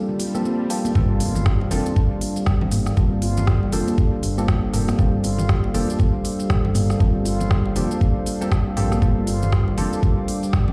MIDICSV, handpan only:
0, 0, Header, 1, 2, 480
1, 0, Start_track
1, 0, Key_signature, -2, "minor"
1, 0, Tempo, 504202
1, 906, Time_signature, 4, 2, 24, 8
1, 10214, End_track
2, 0, Start_track
2, 0, Title_t, "Handpan"
2, 0, Program_c, 0, 114
2, 86, Note_on_c, 0, 50, 98
2, 175, Note_off_c, 0, 50, 0
2, 184, Note_on_c, 0, 65, 75
2, 314, Note_off_c, 0, 65, 0
2, 328, Note_on_c, 0, 53, 73
2, 421, Note_off_c, 0, 53, 0
2, 424, Note_on_c, 0, 60, 92
2, 554, Note_off_c, 0, 60, 0
2, 569, Note_on_c, 0, 60, 76
2, 656, Note_off_c, 0, 60, 0
2, 807, Note_on_c, 0, 58, 74
2, 895, Note_off_c, 0, 58, 0
2, 905, Note_on_c, 0, 55, 101
2, 1042, Note_off_c, 0, 55, 0
2, 1147, Note_on_c, 0, 65, 102
2, 1275, Note_off_c, 0, 65, 0
2, 1386, Note_on_c, 0, 55, 100
2, 1464, Note_off_c, 0, 55, 0
2, 1628, Note_on_c, 0, 62, 99
2, 1705, Note_off_c, 0, 62, 0
2, 1869, Note_on_c, 0, 55, 101
2, 1996, Note_off_c, 0, 55, 0
2, 2012, Note_on_c, 0, 50, 105
2, 2098, Note_off_c, 0, 50, 0
2, 2251, Note_on_c, 0, 55, 99
2, 2303, Note_off_c, 0, 55, 0
2, 2490, Note_on_c, 0, 55, 77
2, 2577, Note_off_c, 0, 55, 0
2, 2729, Note_on_c, 0, 58, 81
2, 2782, Note_off_c, 0, 58, 0
2, 2825, Note_on_c, 0, 55, 102
2, 2962, Note_off_c, 0, 55, 0
2, 3066, Note_on_c, 0, 65, 105
2, 3195, Note_off_c, 0, 65, 0
2, 3305, Note_on_c, 0, 55, 104
2, 3383, Note_off_c, 0, 55, 0
2, 3546, Note_on_c, 0, 62, 98
2, 3624, Note_off_c, 0, 62, 0
2, 3787, Note_on_c, 0, 55, 99
2, 3915, Note_off_c, 0, 55, 0
2, 3931, Note_on_c, 0, 50, 105
2, 4017, Note_off_c, 0, 50, 0
2, 4171, Note_on_c, 0, 55, 103
2, 4222, Note_off_c, 0, 55, 0
2, 4411, Note_on_c, 0, 55, 77
2, 4497, Note_off_c, 0, 55, 0
2, 4650, Note_on_c, 0, 58, 80
2, 4702, Note_off_c, 0, 58, 0
2, 4746, Note_on_c, 0, 55, 105
2, 4882, Note_off_c, 0, 55, 0
2, 4986, Note_on_c, 0, 65, 98
2, 5115, Note_off_c, 0, 65, 0
2, 5226, Note_on_c, 0, 55, 101
2, 5303, Note_off_c, 0, 55, 0
2, 5465, Note_on_c, 0, 62, 104
2, 5543, Note_off_c, 0, 62, 0
2, 5704, Note_on_c, 0, 55, 102
2, 5834, Note_off_c, 0, 55, 0
2, 5847, Note_on_c, 0, 50, 102
2, 5936, Note_off_c, 0, 50, 0
2, 6086, Note_on_c, 0, 55, 105
2, 6140, Note_off_c, 0, 55, 0
2, 6326, Note_on_c, 0, 55, 77
2, 6415, Note_off_c, 0, 55, 0
2, 6566, Note_on_c, 0, 58, 80
2, 6620, Note_off_c, 0, 58, 0
2, 6661, Note_on_c, 0, 55, 102
2, 6800, Note_off_c, 0, 55, 0
2, 6902, Note_on_c, 0, 65, 106
2, 7033, Note_off_c, 0, 65, 0
2, 7144, Note_on_c, 0, 55, 102
2, 7223, Note_off_c, 0, 55, 0
2, 7383, Note_on_c, 0, 62, 101
2, 7462, Note_off_c, 0, 62, 0
2, 7623, Note_on_c, 0, 55, 104
2, 7754, Note_off_c, 0, 55, 0
2, 7766, Note_on_c, 0, 50, 97
2, 7855, Note_off_c, 0, 50, 0
2, 8006, Note_on_c, 0, 55, 99
2, 8060, Note_off_c, 0, 55, 0
2, 8245, Note_on_c, 0, 55, 80
2, 8334, Note_off_c, 0, 55, 0
2, 8485, Note_on_c, 0, 58, 80
2, 8540, Note_off_c, 0, 58, 0
2, 8582, Note_on_c, 0, 55, 105
2, 8720, Note_off_c, 0, 55, 0
2, 8823, Note_on_c, 0, 65, 100
2, 8954, Note_off_c, 0, 65, 0
2, 9062, Note_on_c, 0, 55, 105
2, 9142, Note_off_c, 0, 55, 0
2, 9303, Note_on_c, 0, 62, 106
2, 9382, Note_off_c, 0, 62, 0
2, 9544, Note_on_c, 0, 55, 104
2, 9674, Note_off_c, 0, 55, 0
2, 9688, Note_on_c, 0, 50, 97
2, 9776, Note_off_c, 0, 50, 0
2, 9927, Note_on_c, 0, 55, 96
2, 9981, Note_off_c, 0, 55, 0
2, 10167, Note_on_c, 0, 55, 77
2, 10214, Note_off_c, 0, 55, 0
2, 10214, End_track
0, 0, End_of_file